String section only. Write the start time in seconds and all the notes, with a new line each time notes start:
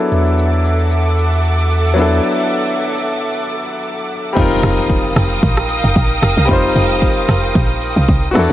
Already playing: A4 E5 F#5 D6
4.36 A#4 F5 G5 D#6
8.35 A4 E5 F#5 D6